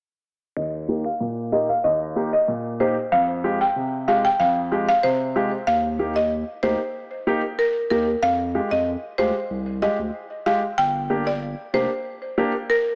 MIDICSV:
0, 0, Header, 1, 4, 480
1, 0, Start_track
1, 0, Key_signature, -3, "major"
1, 0, Tempo, 638298
1, 428, Time_signature, 4, 2, 24, 8
1, 9739, End_track
2, 0, Start_track
2, 0, Title_t, "Marimba"
2, 0, Program_c, 0, 12
2, 426, Note_on_c, 0, 75, 88
2, 522, Note_off_c, 0, 75, 0
2, 794, Note_on_c, 0, 77, 75
2, 879, Note_off_c, 0, 77, 0
2, 1146, Note_on_c, 0, 75, 70
2, 1242, Note_off_c, 0, 75, 0
2, 1273, Note_on_c, 0, 77, 74
2, 1358, Note_off_c, 0, 77, 0
2, 1385, Note_on_c, 0, 75, 87
2, 1482, Note_off_c, 0, 75, 0
2, 1754, Note_on_c, 0, 75, 76
2, 1839, Note_off_c, 0, 75, 0
2, 2107, Note_on_c, 0, 72, 77
2, 2203, Note_off_c, 0, 72, 0
2, 2347, Note_on_c, 0, 77, 96
2, 2443, Note_off_c, 0, 77, 0
2, 2715, Note_on_c, 0, 79, 79
2, 2800, Note_off_c, 0, 79, 0
2, 3068, Note_on_c, 0, 77, 73
2, 3163, Note_off_c, 0, 77, 0
2, 3194, Note_on_c, 0, 79, 80
2, 3279, Note_off_c, 0, 79, 0
2, 3306, Note_on_c, 0, 77, 78
2, 3402, Note_off_c, 0, 77, 0
2, 3674, Note_on_c, 0, 77, 82
2, 3759, Note_off_c, 0, 77, 0
2, 3786, Note_on_c, 0, 72, 79
2, 4132, Note_off_c, 0, 72, 0
2, 4265, Note_on_c, 0, 77, 90
2, 4446, Note_off_c, 0, 77, 0
2, 4631, Note_on_c, 0, 75, 76
2, 4717, Note_off_c, 0, 75, 0
2, 4985, Note_on_c, 0, 72, 76
2, 5081, Note_off_c, 0, 72, 0
2, 5706, Note_on_c, 0, 70, 76
2, 5802, Note_off_c, 0, 70, 0
2, 5944, Note_on_c, 0, 70, 69
2, 6041, Note_off_c, 0, 70, 0
2, 6186, Note_on_c, 0, 77, 100
2, 6367, Note_off_c, 0, 77, 0
2, 6552, Note_on_c, 0, 75, 78
2, 6638, Note_off_c, 0, 75, 0
2, 6905, Note_on_c, 0, 72, 83
2, 7002, Note_off_c, 0, 72, 0
2, 7387, Note_on_c, 0, 75, 74
2, 7482, Note_off_c, 0, 75, 0
2, 7868, Note_on_c, 0, 77, 83
2, 7963, Note_off_c, 0, 77, 0
2, 8106, Note_on_c, 0, 79, 93
2, 8287, Note_off_c, 0, 79, 0
2, 8474, Note_on_c, 0, 74, 78
2, 8559, Note_off_c, 0, 74, 0
2, 8828, Note_on_c, 0, 72, 77
2, 8924, Note_off_c, 0, 72, 0
2, 9548, Note_on_c, 0, 70, 84
2, 9643, Note_off_c, 0, 70, 0
2, 9739, End_track
3, 0, Start_track
3, 0, Title_t, "Grand piano"
3, 0, Program_c, 1, 0
3, 427, Note_on_c, 1, 39, 72
3, 665, Note_on_c, 1, 58, 71
3, 666, Note_on_c, 1, 63, 63
3, 667, Note_on_c, 1, 67, 78
3, 768, Note_off_c, 1, 58, 0
3, 768, Note_off_c, 1, 63, 0
3, 769, Note_off_c, 1, 67, 0
3, 790, Note_off_c, 1, 39, 0
3, 906, Note_on_c, 1, 46, 70
3, 1145, Note_on_c, 1, 58, 68
3, 1146, Note_on_c, 1, 63, 64
3, 1147, Note_on_c, 1, 67, 71
3, 1248, Note_off_c, 1, 58, 0
3, 1249, Note_off_c, 1, 63, 0
3, 1249, Note_off_c, 1, 67, 0
3, 1269, Note_off_c, 1, 46, 0
3, 1386, Note_on_c, 1, 39, 68
3, 1625, Note_on_c, 1, 58, 70
3, 1626, Note_on_c, 1, 63, 63
3, 1626, Note_on_c, 1, 67, 75
3, 1728, Note_off_c, 1, 58, 0
3, 1729, Note_off_c, 1, 63, 0
3, 1729, Note_off_c, 1, 67, 0
3, 1749, Note_off_c, 1, 39, 0
3, 1866, Note_on_c, 1, 46, 71
3, 2106, Note_on_c, 1, 58, 72
3, 2108, Note_on_c, 1, 63, 66
3, 2108, Note_on_c, 1, 67, 76
3, 2209, Note_off_c, 1, 58, 0
3, 2209, Note_off_c, 1, 63, 0
3, 2210, Note_off_c, 1, 67, 0
3, 2229, Note_off_c, 1, 46, 0
3, 2347, Note_on_c, 1, 41, 71
3, 2587, Note_on_c, 1, 56, 70
3, 2587, Note_on_c, 1, 65, 65
3, 2588, Note_on_c, 1, 67, 79
3, 2689, Note_off_c, 1, 56, 0
3, 2689, Note_off_c, 1, 65, 0
3, 2690, Note_off_c, 1, 67, 0
3, 2710, Note_off_c, 1, 41, 0
3, 2827, Note_on_c, 1, 48, 71
3, 3066, Note_on_c, 1, 56, 71
3, 3066, Note_on_c, 1, 65, 63
3, 3068, Note_on_c, 1, 67, 75
3, 3168, Note_off_c, 1, 56, 0
3, 3169, Note_off_c, 1, 65, 0
3, 3169, Note_off_c, 1, 67, 0
3, 3190, Note_off_c, 1, 48, 0
3, 3307, Note_on_c, 1, 41, 72
3, 3546, Note_on_c, 1, 56, 69
3, 3547, Note_on_c, 1, 65, 68
3, 3548, Note_on_c, 1, 67, 78
3, 3649, Note_off_c, 1, 56, 0
3, 3649, Note_off_c, 1, 65, 0
3, 3650, Note_off_c, 1, 67, 0
3, 3670, Note_off_c, 1, 41, 0
3, 3788, Note_on_c, 1, 48, 74
3, 4027, Note_on_c, 1, 56, 74
3, 4028, Note_on_c, 1, 65, 66
3, 4029, Note_on_c, 1, 67, 82
3, 4129, Note_off_c, 1, 56, 0
3, 4130, Note_off_c, 1, 65, 0
3, 4130, Note_off_c, 1, 67, 0
3, 4150, Note_off_c, 1, 48, 0
3, 4506, Note_on_c, 1, 58, 69
3, 4507, Note_on_c, 1, 63, 65
3, 4508, Note_on_c, 1, 67, 78
3, 4609, Note_off_c, 1, 58, 0
3, 4609, Note_off_c, 1, 63, 0
3, 4610, Note_off_c, 1, 67, 0
3, 4987, Note_on_c, 1, 58, 67
3, 4988, Note_on_c, 1, 63, 66
3, 4989, Note_on_c, 1, 67, 75
3, 5089, Note_off_c, 1, 58, 0
3, 5090, Note_off_c, 1, 63, 0
3, 5090, Note_off_c, 1, 67, 0
3, 5466, Note_on_c, 1, 58, 83
3, 5467, Note_on_c, 1, 63, 78
3, 5468, Note_on_c, 1, 67, 94
3, 5569, Note_off_c, 1, 58, 0
3, 5569, Note_off_c, 1, 63, 0
3, 5569, Note_off_c, 1, 67, 0
3, 5948, Note_on_c, 1, 58, 72
3, 5949, Note_on_c, 1, 63, 65
3, 5950, Note_on_c, 1, 67, 78
3, 6049, Note_off_c, 1, 58, 0
3, 6050, Note_off_c, 1, 63, 0
3, 6050, Note_off_c, 1, 67, 0
3, 6428, Note_on_c, 1, 56, 75
3, 6429, Note_on_c, 1, 65, 70
3, 6429, Note_on_c, 1, 67, 80
3, 6530, Note_off_c, 1, 56, 0
3, 6530, Note_off_c, 1, 65, 0
3, 6530, Note_off_c, 1, 67, 0
3, 6907, Note_on_c, 1, 56, 69
3, 6909, Note_on_c, 1, 65, 66
3, 6910, Note_on_c, 1, 67, 77
3, 7009, Note_off_c, 1, 56, 0
3, 7010, Note_off_c, 1, 65, 0
3, 7011, Note_off_c, 1, 67, 0
3, 7387, Note_on_c, 1, 56, 72
3, 7388, Note_on_c, 1, 65, 65
3, 7388, Note_on_c, 1, 67, 78
3, 7489, Note_off_c, 1, 56, 0
3, 7490, Note_off_c, 1, 65, 0
3, 7490, Note_off_c, 1, 67, 0
3, 7867, Note_on_c, 1, 56, 74
3, 7867, Note_on_c, 1, 65, 67
3, 7868, Note_on_c, 1, 67, 82
3, 7969, Note_off_c, 1, 56, 0
3, 7969, Note_off_c, 1, 65, 0
3, 7970, Note_off_c, 1, 67, 0
3, 8346, Note_on_c, 1, 58, 73
3, 8348, Note_on_c, 1, 62, 66
3, 8348, Note_on_c, 1, 67, 82
3, 8449, Note_off_c, 1, 58, 0
3, 8449, Note_off_c, 1, 62, 0
3, 8450, Note_off_c, 1, 67, 0
3, 8825, Note_on_c, 1, 58, 70
3, 8827, Note_on_c, 1, 62, 63
3, 8827, Note_on_c, 1, 67, 79
3, 8928, Note_off_c, 1, 58, 0
3, 8929, Note_off_c, 1, 62, 0
3, 8929, Note_off_c, 1, 67, 0
3, 9307, Note_on_c, 1, 58, 86
3, 9308, Note_on_c, 1, 62, 76
3, 9308, Note_on_c, 1, 67, 91
3, 9409, Note_off_c, 1, 58, 0
3, 9409, Note_off_c, 1, 62, 0
3, 9410, Note_off_c, 1, 67, 0
3, 9739, End_track
4, 0, Start_track
4, 0, Title_t, "Sub bass"
4, 0, Program_c, 2, 38
4, 4267, Note_on_c, 2, 39, 104
4, 4845, Note_off_c, 2, 39, 0
4, 4987, Note_on_c, 2, 38, 90
4, 5086, Note_off_c, 2, 38, 0
4, 5948, Note_on_c, 2, 39, 82
4, 6134, Note_off_c, 2, 39, 0
4, 6187, Note_on_c, 2, 41, 103
4, 6472, Note_off_c, 2, 41, 0
4, 6555, Note_on_c, 2, 41, 102
4, 6741, Note_off_c, 2, 41, 0
4, 6907, Note_on_c, 2, 38, 85
4, 7006, Note_off_c, 2, 38, 0
4, 7148, Note_on_c, 2, 36, 108
4, 7432, Note_off_c, 2, 36, 0
4, 7513, Note_on_c, 2, 38, 87
4, 7602, Note_off_c, 2, 38, 0
4, 8109, Note_on_c, 2, 31, 112
4, 8685, Note_off_c, 2, 31, 0
4, 8828, Note_on_c, 2, 29, 91
4, 8926, Note_off_c, 2, 29, 0
4, 9739, End_track
0, 0, End_of_file